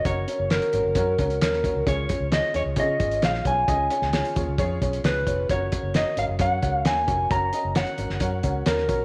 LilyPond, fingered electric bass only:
\new Staff \with { instrumentName = "Fingered electric bass" } { \clef bass \time 4/4 \key fis \major \tempo 4 = 132 fis,,8 r16 fis,,8 r16 gis,,16 fis,,16 fis,8 cis,8 dis,8. cis,16 | cis,8 r16 cis,8 r16 dis,16 cis,16 cis8 gis,,8 ais,,8 b,,8 | cis,8 r16 cis,8 r16 dis,16 cis,16 eis,8 b,,8 cis,8 eis,,8 | fis,,8 r16 fis,,8 r16 gis,,16 fis,,16 fis,8 cis,8 dis,8 eis,,8 |
fis,,8 r16 fis,,8 r16 gis,,16 fis,,16 fis,8 cis,8 dis,8 b,,8 | }